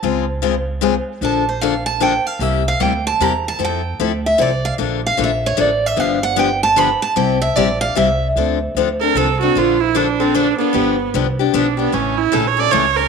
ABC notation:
X:1
M:3/4
L:1/16
Q:"Swing" 1/4=151
K:Cmix
V:1 name="Steel-string acoustic guitar"
z12 | a2 c2 f2 a2 g2 f2 | e2 f2 g2 a2 b2 a2 | g6 e2 d2 f2 |
z2 f2 e2 _d2 =d2 e2 | f2 _g2 =g2 a2 =b2 a2 | g2 e2 d2 f2 e3 z | [K:Dm] z12 |
z12 | z12 | z12 |]
V:2 name="Viola"
z12 | z12 | z12 | z12 |
z12 | z12 | z12 | [K:Dm] z6 B2 A2 ^F2 |
F2 E2 D2 C2 D2 =B,2- | =B,4 z4 D2 B,2 | ^C2 E2 (3A2 ^c2 d2 c2 B2 |]
V:3 name="Steel-string acoustic guitar"
[_D,_A,CF_A]2 z2 [D,A,CFA]2 z2 [D,A,CFA]2 z2 | [D,F,B,DA]2 z2 [D,F,B,DA]2 z2 [D,F,B,DA]2 z2 | [C,G,B,EG]2 z2 [C,G,B,EG]2 z2 [C,G,B,EG]2 z2 | [F,CEA]2 z2 [F,CEA]2 z2 [F,CEA]2 z2 |
[D,F,B,DA]2 z2 [D,F,B,DA]2 z2 [D,F,B,DA]2 z2 | [D,F,=B,DG]2 z2 [D,F,B,DG]2 z2 [D,F,B,DG]2 z2 | [C,G,CEG]2 z2 [C,G,CEG]2 z2 [C,G,CEG]2 z2 | [K:Dm] [D,F,CDA]2 z2 [D,F,CDA]2 [CDA]2 [D,F,CDA]2 [CDA]2 |
[D,F,B,DA]2 z2 [D,F,B,DA]2 [B,DA]2 [D,F,B,DA]2 [B,DA]2 | [D,F,=B,DG]2 z2 [D,F,B,DG]2 [B,DG]2 [D,F,B,DG]2 [B,DG]2 | [^C,E,A,^CA]2 z2 [C,E,A,CA]2 [A,CA]2 [C,E,A,CA]2 [A,CA]2 |]
V:4 name="Upright bass" clef=bass
_D,,12 | B,,,12 | C,,4 D,,4 E,,4 | F,,4 D,,4 C,,4 |
B,,,4 B,,,4 A,,,4 | G,,,12 | C,,4 B,,,4 C,,4 | [K:Dm] D,,4 D,,4 C,,4 |
B,,,12 | G,,,4 C,,4 =B,,,4 | A,,,4 B,,,4 ^C,,4 |]